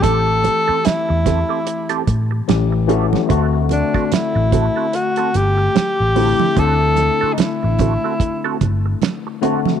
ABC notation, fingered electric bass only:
X:1
M:4/4
L:1/16
Q:"Swing 16ths" 1/4=73
K:Dmix
V:1 name="Fingered electric bass" clef=bass
A,,,3 z2 E,,2 z3 A,,2 A,,,4 | D,,3 z2 A,,,2 z3 G,,,2 z A,,,2 z | D,,3 z2 A,,,2 z3 G,,,2 z4 |]